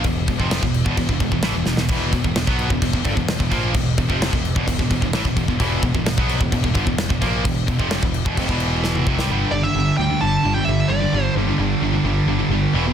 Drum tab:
CC |x-x-x-x-x-x-x---|x-x-x-x-x-x-x-x-|x-x-x-x-x-x-x-x-|x-x-x-x-x-x-x-x-|
SD |----o-------o-oo|----o-------o---|----o-------o---|----o-------o---|
T2 |----------------|----------------|----------------|----------------|
BD |o-oo-o-ooooo----|o-oo-o-ooooo-oo-|o-oo-o-ooooo-ooo|o-oo-o-ooooo-oo-|

CC |x-x-x-x-x-x-----|----------------|----------------|
SD |----o-------o--o|----------------|----------------|
T2 |-------------o--|----------------|----------------|
BD |o-oo-o-ooo----o-|----------------|----------------|